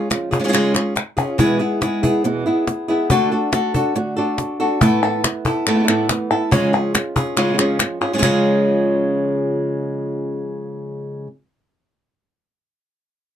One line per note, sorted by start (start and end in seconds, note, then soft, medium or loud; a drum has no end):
0.00 0.10 C#4 soft
0.10 0.31 F3 soft
0.10 0.31 G#3 soft
0.10 0.32 C#4 soft
0.10 0.31 F4 soft
0.10 muted nylon-string guitar stroke medium
0.10 cajon slap loud
0.10 clap medium
0.31 0.53 G#3 soft
0.31 0.38 C#4 soft
0.31 0.53 C#4 soft
0.31 0.39 F4 soft
0.31 0.53 F4 soft
0.31 0.39 G#4 medium
0.31 cajon bass medium
0.39 0.43 G#3 medium
0.39 0.43 C#4 medium
0.39 0.43 F4 medium
0.39 0.44 G#4 medium
0.44 0.47 G#3 medium
0.44 0.48 C#4 medium
0.44 0.48 F4 medium
0.44 0.48 G#4 medium
0.48 0.52 G#3 medium
0.48 0.52 C#4 medium
0.48 0.52 F4 medium
0.48 0.53 G#4 medium
0.53 0.74 C#3 medium
0.53 0.74 G#3 medium
0.53 0.74 C#4 medium
0.53 0.74 F4 medium
0.53 0.73 G#4 medium
0.53 muted nylon-string guitar stroke medium
0.53 clap medium
0.74 0.95 C#4 soft
0.74 0.95 F4 soft
0.74 0.95 G#4 medium
0.74 cajon slap medium
0.74 clap medium
0.96 muted nylon-string guitar stroke medium
0.96 cajon slap medium
0.96 clap medium
1.17 1.38 G#3 soft
1.17 1.39 C#4 soft
1.17 1.38 F4 soft
1.17 1.38 G#4 medium
1.17 cajon bass medium
1.38 1.59 E2 medium
1.38 1.60 B2 medium
1.38 1.59 E3 medium
1.38 1.60 E3 medium
1.38 1.60 G#3 medium
1.38 1.60 B3 medium
1.38 1.59 E4 medium
1.38 1.58 G#4 medium
1.38 cajon bass loud
1.59 1.81 E3 soft
1.59 1.81 G#3 soft
1.59 1.81 B3 soft
1.59 1.81 E4 soft
1.59 1.81 E4 medium
1.59 1.81 G#4 medium
1.81 2.02 G#3 medium
1.81 2.03 B3 medium
1.81 2.03 E4 medium
1.81 2.02 G#4 medium
1.81 muted nylon-string guitar stroke medium
1.81 cajon slap loud
2.03 2.24 E3 soft
2.03 2.24 G#3 soft
2.03 2.24 B3 soft
2.03 2.24 E4 soft
2.03 2.24 E4 medium
2.03 2.24 G#4 medium
2.03 cajon bass medium
2.24 2.45 E2 medium
2.24 2.45 B2 medium
2.24 2.46 E3 medium
2.24 2.46 G#3 medium
2.24 2.45 B3 medium
2.24 2.44 E4 medium
2.24 muted nylon-string guitar stroke medium
2.46 2.66 E3 soft
2.46 2.67 G#3 soft
2.46 2.67 B3 soft
2.46 2.89 B3 medium
2.46 2.67 E4 medium
2.46 2.88 E4 medium
2.46 2.87 G#4 medium
2.67 muted nylon-string guitar stroke medium
2.67 cajon slap loud
2.88 3.09 E3 soft
2.88 3.10 G#3 soft
2.88 3.10 B3 soft
2.88 3.10 B3 medium
2.88 3.09 E4 medium
2.88 3.10 E4 medium
2.88 3.09 G#4 medium
2.88 cajon slap soft
3.10 3.31 D3 medium
3.10 3.31 A3 medium
3.10 3.31 D4 loud
3.10 3.31 D4 medium
3.10 3.30 F#4 medium
3.10 3.31 F#4 medium
3.10 3.30 A4 medium
3.10 cajon bass loud
3.31 3.52 A3 soft
3.31 3.52 D4 soft
3.31 3.52 F#4 soft
3.31 3.52 F#4 medium
3.31 3.52 A4 medium
3.52 3.73 A3 medium
3.52 3.74 D4 medium
3.52 3.74 F#4 medium
3.52 3.73 A4 medium
3.52 muted nylon-string guitar stroke medium
3.52 cajon slap loud
3.74 3.95 A3 soft
3.74 3.96 D4 soft
3.74 3.95 D4 soft
3.74 3.95 F#4 soft
3.74 3.95 F#4 medium
3.74 3.95 A4 medium
3.74 cajon bass medium
3.95 4.16 D3 medium
3.95 4.17 A3 medium
3.95 4.17 D4 medium
3.95 4.16 F#4 medium
3.95 muted nylon-string guitar stroke medium
3.95 cajon slap soft
4.17 4.38 A3 soft
4.17 4.38 D4 soft
4.17 4.60 D4 medium
4.17 4.38 F#4 medium
4.17 4.59 F#4 medium
4.17 4.59 A4 medium
4.38 muted nylon-string guitar stroke medium
4.38 cajon slap medium
4.59 4.81 A3 soft
4.59 4.81 D4 soft
4.59 4.80 F#4 soft
4.59 4.81 F#4 medium
4.59 4.81 A4 medium
4.81 5.23 A2 medium
4.81 5.23 E3 medium
4.81 5.02 A3 medium
4.81 5.24 A3 medium
4.81 5.02 B3 medium
4.81 5.24 B3 medium
4.81 5.23 E4 medium
4.81 5.02 E4 loud
4.81 5.02 A4 medium
4.81 cajon bass loud
5.03 5.24 B3 soft
5.03 5.24 E4 medium
5.03 5.23 A4 medium
5.24 5.66 A3 soft
5.24 5.66 B3 soft
5.24 5.66 E4 soft
5.24 muted nylon-string guitar stroke medium
5.24 cajon slap loud
5.24 clap medium
5.45 5.66 B3 soft
5.45 5.67 E4 medium
5.45 5.66 A4 medium
5.45 cajon bass medium
5.67 5.87 A3 medium
5.67 5.88 B3 medium
5.67 5.88 E4 medium
5.67 5.87 A4 medium
5.67 muted nylon-string guitar stroke medium
5.67 clap loud
5.75 5.78 E3 soft
5.75 5.78 A3 soft
5.75 5.79 B3 medium
5.75 5.79 E4 medium
5.79 5.82 E3 medium
5.79 5.83 A3 medium
5.79 5.83 B3 medium
5.79 5.84 E4 medium
5.83 5.87 E3 medium
5.83 5.87 A3 medium
5.83 5.88 B3 medium
5.83 5.88 E4 medium
5.88 6.09 A2 medium
5.88 6.08 E3 medium
5.88 6.09 A3 medium
5.88 6.09 B3 medium
5.88 6.09 B3 soft
5.88 6.09 E4 medium
5.88 6.09 A4 medium
5.88 clap medium
6.09 6.30 E3 soft
6.09 6.30 A3 soft
6.09 6.30 B3 soft
6.09 6.30 E4 soft
6.09 muted nylon-string guitar stroke medium
6.09 cajon slap loud
6.09 clap medium
6.31 6.52 A3 soft
6.31 6.52 B3 soft
6.31 6.51 E4 soft
6.31 6.52 E4 medium
6.31 6.51 A4 medium
6.51 6.72 C#3 medium
6.51 6.94 C#3 medium
6.51 6.94 F3 medium
6.51 6.73 G#3 medium
6.51 6.94 G#3 medium
6.51 6.73 C#4 loud
6.51 6.94 C#4 medium
6.51 6.73 F4 loud
6.51 6.93 F4 medium
6.51 6.72 G#4 medium
6.51 cajon bass loud
6.73 6.93 C#4 soft
6.73 6.94 F4 medium
6.73 6.94 G#4 medium
6.94 7.37 G#3 soft
6.94 7.36 C#4 soft
6.94 7.36 F4 soft
6.94 muted nylon-string guitar stroke medium
6.94 cajon slap loud
6.94 clap medium
7.16 7.36 C#4 soft
7.16 7.37 F4 medium
7.16 7.36 G#4 medium
7.16 cajon bass medium
7.37 7.58 C#3 medium
7.37 7.58 G#3 medium
7.37 7.58 C#4 medium
7.37 7.58 F4 loud
7.37 7.57 G#4 medium
7.37 muted nylon-string guitar stroke medium
7.37 cajon slap soft
7.37 clap medium
7.49 7.52 F3 medium
7.49 7.53 G#3 soft
7.49 7.53 C#4 medium
7.49 7.53 F4 medium
7.54 7.57 F3 medium
7.54 7.57 G#3 medium
7.54 7.58 C#4 medium
7.54 7.58 F4 medium
7.58 7.79 C#3 medium
7.58 7.78 F3 medium
7.58 7.79 G#3 medium
7.58 7.79 C#4 medium
7.58 7.80 C#4 soft
7.58 7.80 F4 medium
7.58 7.79 G#4 medium
7.58 cajon slap soft
7.58 clap medium
7.79 8.00 F3 medium
7.79 8.01 G#3 soft
7.79 8.00 C#4 medium
7.79 7.99 F4 soft
7.79 muted nylon-string guitar stroke medium
7.79 cajon slap medium
7.79 clap medium
8.01 8.13 G#3 soft
8.01 8.13 C#4 soft
8.01 8.14 F4 soft
8.01 8.13 F4 medium
8.01 8.14 G#4 medium
8.01 cajon slap soft
8.13 8.17 F3 soft
8.13 8.17 G#3 medium
8.13 8.17 G#3 soft
8.13 8.18 C#4 medium
8.13 8.18 C#4 soft
8.13 8.18 F4 medium
8.13 8.18 F4 soft
8.13 8.18 G#4 medium
8.18 8.22 F3 medium
8.18 8.22 G#3 medium
8.18 8.22 C#4 medium
8.18 8.22 F4 medium
8.18 8.23 F4 medium
8.18 8.23 G#4 medium
8.22 11.26 C#3 medium
8.22 11.27 F3 medium
8.22 11.27 G#3 medium
8.22 11.27 C#4 medium
8.22 11.27 F4 loud
8.22 11.28 F4 medium
8.22 11.28 G#4 loud
8.22 cajon bass loud
8.22 clap loud